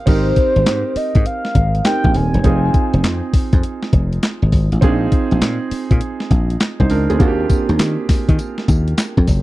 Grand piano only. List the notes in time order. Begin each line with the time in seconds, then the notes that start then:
0.06 C4 D#4 G4 A#4
1.85 C4 D#4 G4 A#4
2.44 C4 D#4 F4 G#4
4.81 C4 D4 F4 G#4
4.89 D#4
6.80 D#4 C5
6.90 D4 A#4
7.10 C4 G#4
7.19 A#3 D4 F4 F#4
7.28 G4